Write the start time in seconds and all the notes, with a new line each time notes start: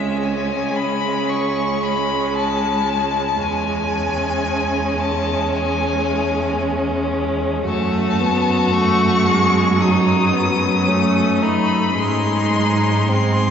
Already playing: C#2 G#3 C#4 E5
0.22 G#5
0.76 B5
1.29 C#6
1.83 B5
2.36 A5
3.41 E2 G#3 C#4 G#5
5.00 A5
5.53 G#5
7.67 F#2 A3 F#4 A5
8.21 B3
8.73 A3 C#6
9.28 G#3
9.80 F#3 D#4 D#6
10.34 B3
10.88 A3 C#4
11.42 D#4 B5
11.98 G#2 G#3 D#4 C6
13.08 G#3 C4 C6